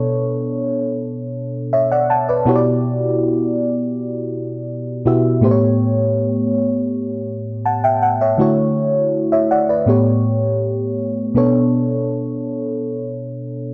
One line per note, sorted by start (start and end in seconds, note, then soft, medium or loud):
0.00 2.42 B2 medium
0.00 2.42 B3 medium
0.00 2.42 D4 medium
0.00 2.43 A4 medium
0.00 1.72 C#5 medium
1.73 1.90 C#5 medium
1.73 1.90 E5 medium
1.92 2.09 D5 medium
1.92 2.09 F#5 medium
2.10 2.28 F#5 medium
2.10 2.27 A5 medium
2.29 2.64 B4 medium
2.29 2.54 D5 medium
2.45 5.01 B2 medium
2.45 5.01 B3 medium
2.45 5.02 E4 medium
2.45 5.02 F#4 medium
2.45 5.03 G4 medium
2.45 2.54 C#5 medium
2.55 5.06 D5 medium
5.05 5.43 B2 medium
5.05 5.42 B3 medium
5.05 5.43 E4 medium
5.05 5.43 F#4 medium
5.05 5.43 G4 medium
5.05 5.43 E5 medium
5.41 8.34 A2 medium
5.41 8.35 A3 medium
5.41 8.35 B3 medium
5.41 8.35 G4 medium
5.41 5.50 C5 medium
5.51 7.65 C#5 medium
7.66 7.83 F#5 medium
7.66 7.83 A5 medium
7.84 8.02 E5 medium
7.84 8.01 G5 medium
8.02 8.20 F#5 medium
8.21 8.40 C#5 medium
8.21 8.56 E5 medium
8.38 9.84 D3 medium
8.38 9.84 A3 medium
8.38 9.84 E4 medium
8.38 9.85 F#4 medium
8.38 8.76 C#5 medium
9.32 9.50 C#5 medium
9.32 9.49 E5 medium
9.51 9.68 D5 medium
9.51 9.68 F#5 medium
9.69 10.04 B4 medium
9.69 10.04 D5 medium
9.86 11.32 A2 medium
9.86 11.32 A3 medium
9.86 11.33 B3 medium
9.86 11.33 G4 medium
9.86 11.34 C#5 medium
11.34 13.74 B2 medium
11.34 13.74 B3 medium
11.34 13.74 D4 medium
11.34 13.74 A4 medium
11.34 13.74 C#5 medium